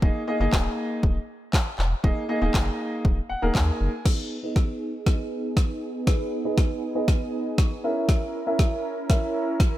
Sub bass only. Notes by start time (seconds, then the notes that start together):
0.02 D#1
0.40 F#1
0.53 D#1
1.03 D#1
1.79 E1
2.04 D#1
2.42 D#1
2.54 F#1
3.05 D#1
3.30 D#1
3.43 D#1
3.55 D#2
3.81 F#1